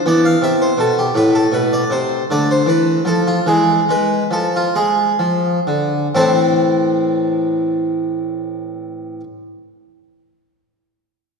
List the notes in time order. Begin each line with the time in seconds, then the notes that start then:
0.06 E3 B3 D5
0.25 F5
0.42 C3 E5
0.62 C5
0.77 B2 A4
0.99 G4
1.15 A2 A3 B4
1.35 A4
1.52 B2 B4
1.73 D5
1.90 C3 C5
2.30 D3 A3 D5
2.51 C5
2.66 E3 B4
3.05 F3 A4
3.27 F4
3.46 E3 G#3 G#4
3.89 G#3 B4
4.31 F3 A4
4.56 F4
4.75 G#3 G#4
5.19 F3
5.67 D3
6.15 A2 E3 C4 E4 A4 C5